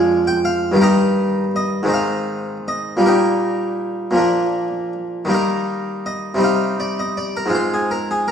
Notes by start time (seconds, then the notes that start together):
Already playing: F2 F3 G#3 D4 D5 F5 G#5
0.27 G5
0.45 F5
0.72 G2 D#3
0.76 G3
0.82 D#4 G4 A#4
1.56 D#5
1.83 G#2 D#3 C4
1.89 D#4
1.94 F5
2.68 D#5
2.97 A#2 G3 A#3
3.06 D#4 G4 A#4
4.11 A#2 F3
4.16 A#3 D4
5.25 D#3 G3 A#3
5.31 D#4 A#4
6.06 D#5
6.35 C3 G3
6.39 C4 D#4
6.44 F5
6.80 D5
6.99 D#5
7.17 D5
7.37 A#4
7.46 G#2 G#3 C4
7.50 F4
7.55 C5
7.74 G#4
7.91 A#4
8.11 G#4
8.28 A#4